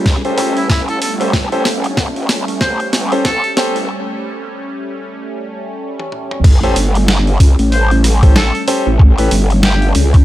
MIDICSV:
0, 0, Header, 1, 6, 480
1, 0, Start_track
1, 0, Tempo, 638298
1, 1005, Time_signature, 4, 2, 24, 8
1, 7706, End_track
2, 0, Start_track
2, 0, Title_t, "Harmonica"
2, 0, Program_c, 0, 22
2, 426, Note_on_c, 0, 64, 82
2, 489, Note_off_c, 0, 64, 0
2, 522, Note_on_c, 0, 64, 76
2, 615, Note_off_c, 0, 64, 0
2, 666, Note_on_c, 0, 69, 82
2, 729, Note_off_c, 0, 69, 0
2, 763, Note_on_c, 0, 69, 80
2, 856, Note_off_c, 0, 69, 0
2, 1962, Note_on_c, 0, 72, 89
2, 2166, Note_off_c, 0, 72, 0
2, 2444, Note_on_c, 0, 69, 93
2, 2647, Note_off_c, 0, 69, 0
2, 5801, Note_on_c, 0, 72, 88
2, 6006, Note_off_c, 0, 72, 0
2, 6283, Note_on_c, 0, 69, 95
2, 6486, Note_off_c, 0, 69, 0
2, 7240, Note_on_c, 0, 67, 89
2, 7445, Note_off_c, 0, 67, 0
2, 7706, End_track
3, 0, Start_track
3, 0, Title_t, "Grand piano"
3, 0, Program_c, 1, 0
3, 187, Note_on_c, 1, 67, 63
3, 187, Note_on_c, 1, 69, 62
3, 187, Note_on_c, 1, 72, 78
3, 188, Note_on_c, 1, 61, 68
3, 270, Note_off_c, 1, 61, 0
3, 270, Note_off_c, 1, 67, 0
3, 270, Note_off_c, 1, 69, 0
3, 270, Note_off_c, 1, 72, 0
3, 282, Note_on_c, 1, 67, 82
3, 283, Note_on_c, 1, 61, 89
3, 283, Note_on_c, 1, 69, 76
3, 283, Note_on_c, 1, 72, 97
3, 417, Note_off_c, 1, 61, 0
3, 417, Note_off_c, 1, 67, 0
3, 417, Note_off_c, 1, 72, 0
3, 418, Note_off_c, 1, 69, 0
3, 905, Note_on_c, 1, 67, 65
3, 906, Note_on_c, 1, 61, 70
3, 906, Note_on_c, 1, 69, 67
3, 906, Note_on_c, 1, 72, 80
3, 997, Note_off_c, 1, 61, 0
3, 997, Note_off_c, 1, 67, 0
3, 997, Note_off_c, 1, 69, 0
3, 998, Note_off_c, 1, 72, 0
3, 1146, Note_on_c, 1, 61, 90
3, 1146, Note_on_c, 1, 67, 78
3, 1146, Note_on_c, 1, 69, 84
3, 1146, Note_on_c, 1, 72, 100
3, 1237, Note_off_c, 1, 67, 0
3, 1237, Note_off_c, 1, 69, 0
3, 1238, Note_off_c, 1, 61, 0
3, 1238, Note_off_c, 1, 72, 0
3, 2347, Note_on_c, 1, 61, 88
3, 2347, Note_on_c, 1, 67, 79
3, 2347, Note_on_c, 1, 72, 97
3, 2348, Note_on_c, 1, 69, 79
3, 2438, Note_off_c, 1, 61, 0
3, 2438, Note_off_c, 1, 67, 0
3, 2438, Note_off_c, 1, 69, 0
3, 2438, Note_off_c, 1, 72, 0
3, 2684, Note_on_c, 1, 61, 91
3, 2684, Note_on_c, 1, 67, 87
3, 2684, Note_on_c, 1, 69, 85
3, 2684, Note_on_c, 1, 72, 102
3, 2818, Note_off_c, 1, 61, 0
3, 2818, Note_off_c, 1, 67, 0
3, 2818, Note_off_c, 1, 69, 0
3, 2818, Note_off_c, 1, 72, 0
3, 4989, Note_on_c, 1, 61, 95
3, 4989, Note_on_c, 1, 67, 83
3, 4989, Note_on_c, 1, 69, 86
3, 4989, Note_on_c, 1, 72, 100
3, 5079, Note_off_c, 1, 61, 0
3, 5079, Note_off_c, 1, 67, 0
3, 5079, Note_off_c, 1, 69, 0
3, 5079, Note_off_c, 1, 72, 0
3, 6188, Note_on_c, 1, 61, 87
3, 6188, Note_on_c, 1, 69, 81
3, 6188, Note_on_c, 1, 72, 98
3, 6189, Note_on_c, 1, 67, 81
3, 6278, Note_off_c, 1, 69, 0
3, 6279, Note_off_c, 1, 61, 0
3, 6279, Note_off_c, 1, 67, 0
3, 6279, Note_off_c, 1, 72, 0
3, 6524, Note_on_c, 1, 61, 94
3, 6524, Note_on_c, 1, 72, 109
3, 6525, Note_on_c, 1, 67, 82
3, 6525, Note_on_c, 1, 69, 86
3, 6658, Note_off_c, 1, 61, 0
3, 6658, Note_off_c, 1, 67, 0
3, 6658, Note_off_c, 1, 69, 0
3, 6658, Note_off_c, 1, 72, 0
3, 6906, Note_on_c, 1, 67, 67
3, 6906, Note_on_c, 1, 69, 70
3, 6906, Note_on_c, 1, 71, 80
3, 6907, Note_on_c, 1, 61, 71
3, 6997, Note_off_c, 1, 71, 0
3, 6998, Note_off_c, 1, 61, 0
3, 6998, Note_off_c, 1, 67, 0
3, 6998, Note_off_c, 1, 69, 0
3, 7706, End_track
4, 0, Start_track
4, 0, Title_t, "Analog synth pad"
4, 0, Program_c, 2, 89
4, 0, Note_on_c, 2, 55, 75
4, 0, Note_on_c, 2, 57, 70
4, 0, Note_on_c, 2, 61, 87
4, 4814, Note_off_c, 2, 57, 0
4, 4815, Note_off_c, 2, 55, 0
4, 4815, Note_off_c, 2, 61, 0
4, 4843, Note_on_c, 2, 57, 73
4, 4843, Note_on_c, 2, 61, 86
4, 4844, Note_on_c, 2, 55, 79
4, 7706, Note_off_c, 2, 55, 0
4, 7706, Note_off_c, 2, 57, 0
4, 7706, Note_off_c, 2, 61, 0
4, 7706, End_track
5, 0, Start_track
5, 0, Title_t, "Wobble bass"
5, 0, Program_c, 3, 39
5, 0, Note_on_c, 3, 37, 98
5, 165, Note_off_c, 3, 37, 0
5, 187, Note_on_c, 3, 37, 96
5, 405, Note_off_c, 3, 37, 0
5, 428, Note_on_c, 3, 33, 101
5, 749, Note_off_c, 3, 33, 0
5, 764, Note_on_c, 3, 31, 99
5, 989, Note_off_c, 3, 31, 0
5, 1002, Note_on_c, 3, 33, 94
5, 1228, Note_off_c, 3, 33, 0
5, 1245, Note_on_c, 3, 31, 98
5, 1709, Note_off_c, 3, 31, 0
5, 1724, Note_on_c, 3, 37, 99
5, 1845, Note_off_c, 3, 37, 0
5, 1868, Note_on_c, 3, 33, 93
5, 2565, Note_off_c, 3, 33, 0
5, 2827, Note_on_c, 3, 33, 93
5, 2925, Note_off_c, 3, 33, 0
5, 4845, Note_on_c, 3, 33, 99
5, 5069, Note_off_c, 3, 33, 0
5, 5084, Note_on_c, 3, 31, 97
5, 5549, Note_off_c, 3, 31, 0
5, 5565, Note_on_c, 3, 37, 95
5, 5685, Note_off_c, 3, 37, 0
5, 5709, Note_on_c, 3, 33, 99
5, 6406, Note_off_c, 3, 33, 0
5, 6669, Note_on_c, 3, 33, 94
5, 6990, Note_off_c, 3, 33, 0
5, 7006, Note_on_c, 3, 31, 96
5, 7470, Note_off_c, 3, 31, 0
5, 7486, Note_on_c, 3, 37, 94
5, 7706, Note_off_c, 3, 37, 0
5, 7706, End_track
6, 0, Start_track
6, 0, Title_t, "Drums"
6, 43, Note_on_c, 9, 36, 93
6, 44, Note_on_c, 9, 38, 60
6, 44, Note_on_c, 9, 46, 38
6, 118, Note_off_c, 9, 36, 0
6, 119, Note_off_c, 9, 38, 0
6, 119, Note_off_c, 9, 46, 0
6, 186, Note_on_c, 9, 46, 19
6, 261, Note_off_c, 9, 46, 0
6, 283, Note_on_c, 9, 46, 65
6, 358, Note_off_c, 9, 46, 0
6, 426, Note_on_c, 9, 46, 27
6, 501, Note_off_c, 9, 46, 0
6, 523, Note_on_c, 9, 36, 92
6, 523, Note_on_c, 9, 38, 69
6, 523, Note_on_c, 9, 46, 41
6, 598, Note_off_c, 9, 36, 0
6, 598, Note_off_c, 9, 38, 0
6, 598, Note_off_c, 9, 46, 0
6, 665, Note_on_c, 9, 46, 20
6, 741, Note_off_c, 9, 46, 0
6, 764, Note_on_c, 9, 46, 68
6, 840, Note_off_c, 9, 46, 0
6, 908, Note_on_c, 9, 46, 29
6, 983, Note_off_c, 9, 46, 0
6, 1003, Note_on_c, 9, 36, 93
6, 1004, Note_on_c, 9, 38, 71
6, 1004, Note_on_c, 9, 46, 36
6, 1078, Note_off_c, 9, 36, 0
6, 1079, Note_off_c, 9, 38, 0
6, 1079, Note_off_c, 9, 46, 0
6, 1145, Note_on_c, 9, 46, 20
6, 1220, Note_off_c, 9, 46, 0
6, 1242, Note_on_c, 9, 38, 73
6, 1242, Note_on_c, 9, 46, 66
6, 1318, Note_off_c, 9, 38, 0
6, 1318, Note_off_c, 9, 46, 0
6, 1385, Note_on_c, 9, 46, 29
6, 1460, Note_off_c, 9, 46, 0
6, 1483, Note_on_c, 9, 36, 96
6, 1483, Note_on_c, 9, 38, 75
6, 1483, Note_on_c, 9, 46, 40
6, 1558, Note_off_c, 9, 36, 0
6, 1559, Note_off_c, 9, 38, 0
6, 1559, Note_off_c, 9, 46, 0
6, 1627, Note_on_c, 9, 46, 19
6, 1702, Note_off_c, 9, 46, 0
6, 1723, Note_on_c, 9, 38, 76
6, 1723, Note_on_c, 9, 46, 68
6, 1798, Note_off_c, 9, 38, 0
6, 1798, Note_off_c, 9, 46, 0
6, 1867, Note_on_c, 9, 46, 29
6, 1942, Note_off_c, 9, 46, 0
6, 1961, Note_on_c, 9, 38, 79
6, 1961, Note_on_c, 9, 46, 36
6, 1963, Note_on_c, 9, 36, 93
6, 2036, Note_off_c, 9, 38, 0
6, 2036, Note_off_c, 9, 46, 0
6, 2038, Note_off_c, 9, 36, 0
6, 2105, Note_on_c, 9, 46, 20
6, 2181, Note_off_c, 9, 46, 0
6, 2203, Note_on_c, 9, 38, 82
6, 2203, Note_on_c, 9, 46, 69
6, 2278, Note_off_c, 9, 38, 0
6, 2278, Note_off_c, 9, 46, 0
6, 2346, Note_on_c, 9, 46, 28
6, 2421, Note_off_c, 9, 46, 0
6, 2443, Note_on_c, 9, 36, 97
6, 2443, Note_on_c, 9, 38, 94
6, 2443, Note_on_c, 9, 46, 43
6, 2518, Note_off_c, 9, 36, 0
6, 2518, Note_off_c, 9, 38, 0
6, 2518, Note_off_c, 9, 46, 0
6, 2586, Note_on_c, 9, 46, 21
6, 2661, Note_off_c, 9, 46, 0
6, 2684, Note_on_c, 9, 38, 85
6, 2684, Note_on_c, 9, 46, 67
6, 2759, Note_off_c, 9, 38, 0
6, 2759, Note_off_c, 9, 46, 0
6, 2827, Note_on_c, 9, 46, 29
6, 2902, Note_off_c, 9, 46, 0
6, 4508, Note_on_c, 9, 48, 56
6, 4584, Note_off_c, 9, 48, 0
6, 4604, Note_on_c, 9, 47, 74
6, 4679, Note_off_c, 9, 47, 0
6, 4748, Note_on_c, 9, 45, 83
6, 4823, Note_off_c, 9, 45, 0
6, 4844, Note_on_c, 9, 36, 122
6, 4846, Note_on_c, 9, 46, 40
6, 4846, Note_on_c, 9, 49, 99
6, 4920, Note_off_c, 9, 36, 0
6, 4921, Note_off_c, 9, 46, 0
6, 4921, Note_off_c, 9, 49, 0
6, 4989, Note_on_c, 9, 46, 21
6, 5064, Note_off_c, 9, 46, 0
6, 5084, Note_on_c, 9, 46, 73
6, 5159, Note_off_c, 9, 46, 0
6, 5229, Note_on_c, 9, 46, 31
6, 5304, Note_off_c, 9, 46, 0
6, 5326, Note_on_c, 9, 38, 115
6, 5326, Note_on_c, 9, 46, 41
6, 5402, Note_off_c, 9, 38, 0
6, 5402, Note_off_c, 9, 46, 0
6, 5469, Note_on_c, 9, 46, 21
6, 5544, Note_off_c, 9, 46, 0
6, 5565, Note_on_c, 9, 36, 103
6, 5566, Note_on_c, 9, 46, 71
6, 5640, Note_off_c, 9, 36, 0
6, 5641, Note_off_c, 9, 46, 0
6, 5708, Note_on_c, 9, 46, 31
6, 5783, Note_off_c, 9, 46, 0
6, 5806, Note_on_c, 9, 46, 41
6, 5882, Note_off_c, 9, 46, 0
6, 5950, Note_on_c, 9, 46, 21
6, 6025, Note_off_c, 9, 46, 0
6, 6047, Note_on_c, 9, 37, 40
6, 6047, Note_on_c, 9, 46, 77
6, 6122, Note_off_c, 9, 37, 0
6, 6122, Note_off_c, 9, 46, 0
6, 6187, Note_on_c, 9, 36, 113
6, 6188, Note_on_c, 9, 46, 31
6, 6263, Note_off_c, 9, 36, 0
6, 6263, Note_off_c, 9, 46, 0
6, 6285, Note_on_c, 9, 38, 126
6, 6285, Note_on_c, 9, 46, 45
6, 6360, Note_off_c, 9, 38, 0
6, 6360, Note_off_c, 9, 46, 0
6, 6429, Note_on_c, 9, 46, 21
6, 6504, Note_off_c, 9, 46, 0
6, 6524, Note_on_c, 9, 46, 74
6, 6599, Note_off_c, 9, 46, 0
6, 6764, Note_on_c, 9, 36, 122
6, 6839, Note_off_c, 9, 36, 0
6, 6906, Note_on_c, 9, 46, 42
6, 6981, Note_off_c, 9, 46, 0
6, 7003, Note_on_c, 9, 46, 70
6, 7078, Note_off_c, 9, 46, 0
6, 7147, Note_on_c, 9, 46, 29
6, 7222, Note_off_c, 9, 46, 0
6, 7242, Note_on_c, 9, 38, 124
6, 7242, Note_on_c, 9, 46, 40
6, 7317, Note_off_c, 9, 38, 0
6, 7317, Note_off_c, 9, 46, 0
6, 7385, Note_on_c, 9, 46, 20
6, 7460, Note_off_c, 9, 46, 0
6, 7481, Note_on_c, 9, 46, 73
6, 7556, Note_off_c, 9, 46, 0
6, 7625, Note_on_c, 9, 46, 31
6, 7627, Note_on_c, 9, 36, 112
6, 7700, Note_off_c, 9, 46, 0
6, 7702, Note_off_c, 9, 36, 0
6, 7706, End_track
0, 0, End_of_file